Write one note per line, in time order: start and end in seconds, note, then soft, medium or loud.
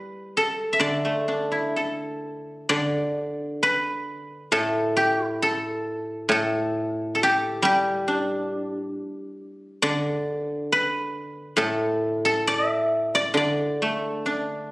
0.00 1.74 G3 soft
0.00 1.37 G4 medium
0.00 0.37 A4 medium
0.00 1.53 B4 medium
0.37 1.76 A4 medium
0.73 2.45 E5 soft
0.80 2.68 D3 soft
0.80 2.65 D5 medium
1.05 2.95 A3 soft
1.28 3.18 D4 soft
1.52 3.41 E4 soft
1.76 3.64 A4 soft
2.69 5.42 D3 soft
2.69 4.54 D5 medium
3.63 5.67 B4 medium
4.52 6.28 A2 soft
4.52 5.42 A4 medium
4.97 5.26 G4 medium
5.26 7.23 E4 medium
5.42 6.31 A4 medium
6.29 8.94 A2 medium
6.29 7.14 A4 medium
7.15 9.34 A4 soft
7.23 7.65 G4 medium
7.62 10.26 G3 medium
7.62 10.01 G4 medium
8.08 9.83 D4 soft
9.82 12.46 D3 medium
9.82 11.67 D5 medium
10.72 12.77 B4 medium
11.57 13.35 A2 medium
11.57 12.25 A4 medium
12.25 14.44 A4 medium
12.47 12.66 D5 medium
12.66 14.19 E5 medium
13.15 13.37 D5 medium
13.34 14.72 D3 soft
13.34 14.72 D5 medium
13.82 14.72 A3 soft
14.26 14.72 D4 soft